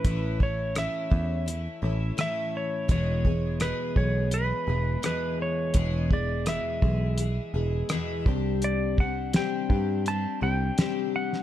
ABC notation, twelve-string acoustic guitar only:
X:1
M:4/4
L:1/8
Q:1/4=84
K:Emix
V:1 name="Twelve-string acoustic guitar"
[A,,E,A,CE] [A,CE] [A,,E,A,CE] [A,CE] [E,A,CE] [A,CE] [A,,E,A,CE]2 | [E,,B,,E,G,B,G] [E,G,B,G] [E,,B,,E,G,B,G] [E,G,B,G] [E,G,B,G] [E,G,B,G] [E,,B,,E,G,B,G]2 | [E,,B,,E,G,B,G] [E,G,B,G] [E,,B,,E,G,B,G] [E,G,B,G] [E,G,B,G] [E,G,B,G] [E,,B,,E,G,B,G] [=C,=G,=CD=G]- | [=C,=G,=CD=G] [CDG] [C,G,CDG] [CDG] [G,CDG] [CDG] [C,G,CDG]2 |]